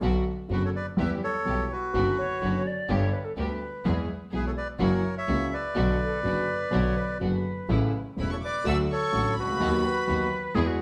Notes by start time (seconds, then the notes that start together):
0.01 B1 B2 D3 F#3 B3 D4 F#4
0.49 F#1 F#2 D3 F#3 B3 D4 F#4 B4
0.53 F#4
0.65 A4 C#5
0.76 B4 D5
0.97 E2 E3 G3 B3 E4 G4 B4 E5
1.24 A4 C#5
1.45 B1 B2 E3 G3 B3 E4 G4
1.72 F#4 B4
1.93 F#1 F#2 D3 F#3 B3 D4 F#4
2.18 C#5
2.41 F#1 F#2 D3 F#3 B3 D4 F#4
2.67 D5
2.89 G1 G2 D3 G3 B3 D4 G4 C#5
3.13 B4
3.25 A4
3.36 D2 D3 G3 B3 D4 G4 B4
3.85 E2 E3 G#3 B3 E4 G#4
4.32 B1 B2 E3 G#3 B3 E4 G#4 B4
4.46 A4 C#5
4.57 B4 D5
4.79 F#1 F#2 E3 F#3 A#3 C#4 E4 F#4 C#5
4.83 A#4
5.18 C#5 E5
5.27 C#2 C#3 E3 A#3 C#4 E4 F#4
5.54 B4 D5
5.75 B1 B2 D3 F#3 B3 D4 F#4
6.01 A4
6.23 F#1 F#2 D3 F#3 B3 D4 F#4 B4
6.71 B1 B2 D3 F#3 B3 D4 F#4 C#5
6.97 B4
7.20 F#1 F#2 D3 F#3 B3 D4 F#4 B4
7.69 A1 A2 C#3 E3 A3 C#4 E4
8.16 E1 E2 C#3 E3 A3 C#4 E4 B5
8.22 B4
8.31 A4 C#5 C#6
8.43 B4 D5 D6
8.64 D2 D3 F#3 A3 D4 F#4 A4 E5 E6
8.91 A4 C#5 C#6
9.12 A1 A2 D3 F#3 A3 D4 F#4
9.37 C#2 F#4 B4 B5
9.43 C2
9.48 C#2
9.53 D2
9.59 D#2 D#3 F#3 B3 D#4 F#4
9.85 B4
10.07 D#2 D#3 F#3 B3 D#4 F#4
10.55 E2 E3 G#3 B3 E4 G#4
10.67 F#4